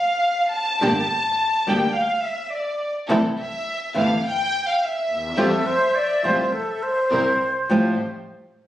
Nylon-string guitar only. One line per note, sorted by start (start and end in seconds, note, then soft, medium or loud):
0.82 0.91 D3 medium
0.82 0.91 G3 medium
0.82 0.91 A#3 medium
0.82 0.91 D4 medium
0.82 0.91 G4 medium
1.67 1.84 D3 medium
1.67 1.84 G3 medium
1.67 1.84 A#3 medium
1.67 1.84 D4 medium
1.67 1.84 G4 medium
3.09 3.18 C3 medium
3.09 3.18 E3 medium
3.09 3.19 A3 medium
3.09 3.19 C4 medium
3.09 3.19 E4 medium
3.95 4.11 C3 medium
3.95 4.12 E3 medium
3.95 4.12 A3 medium
3.95 4.12 C4 medium
3.95 4.12 E4 medium
5.37 5.46 F3 medium
5.37 5.47 G3 medium
5.37 5.47 C4 medium
5.37 5.47 F4 medium
6.24 6.41 F3 medium
6.24 6.41 G3 medium
6.24 6.41 C4 medium
6.24 6.42 F4 medium
7.69 7.93 F2 medium
7.69 7.93 A2 medium
7.69 7.93 F3 medium
7.69 7.94 G3 medium
7.69 7.94 C4 medium
7.69 7.94 F4 medium